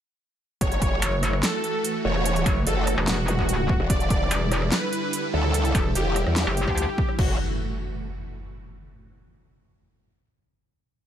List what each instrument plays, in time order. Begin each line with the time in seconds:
0.61 wobble bass F#1, supersaw synth E3 A3 F#4 C#5, kick, closed hi-hat
0.72 closed hi-hat
0.82 kick, closed hi-hat
1.02 wobble bass F#1, closed hi-hat
1.23 cross-stick, closed hi-hat
1.33 cross-stick
1.43 supersaw synth A4, snare, clap, closed hi-hat
1.64 closed hi-hat
1.84 closed hi-hat
2.05 wobble bass E1, supersaw synth C#5
2.16 cross-stick
2.26 closed hi-hat
2.36 closed hi-hat
2.46 wobble bass F#1, kick, closed hi-hat
2.67 wobble bass F#1, supersaw synth A4, closed hi-hat
2.87 cross-stick, closed hi-hat
2.98 wobble bass E1, cross-stick
3.08 supersaw synth F#4, snare, clap, closed hi-hat
3.28 closed hi-hat, zap
3.39 kick, cross-stick
3.49 closed hi-hat
3.69 kick
3.80 wobble bass E1, cross-stick
3.90 wobble bass E1, supersaw synth D3 G3 E4 D5, kick, closed hi-hat
4.00 closed hi-hat
4.10 kick, closed hi-hat
4.31 wobble bass E1, closed hi-hat
4.52 cross-stick, closed hi-hat
4.62 cross-stick
4.72 supersaw synth B4, snare, clap, closed hi-hat
4.93 closed hi-hat
5.13 closed hi-hat
5.34 wobble bass D2, supersaw synth A4
5.44 cross-stick
5.54 closed hi-hat
5.65 closed hi-hat
5.75 wobble bass E1, kick, closed hi-hat
5.95 wobble bass E1, supersaw synth G4, closed hi-hat
6.16 cross-stick, closed hi-hat
6.26 wobble bass E2, cross-stick
6.36 supersaw synth G4, snare, clap, closed hi-hat
6.47 wobble bass F#1
6.57 closed hi-hat
6.68 wobble bass D2, kick, cross-stick
6.78 closed hi-hat
6.98 kick
7.09 cross-stick
7.19 wobble bass F#1, supersaw synth E3 A3 F#4, kick, crash, impact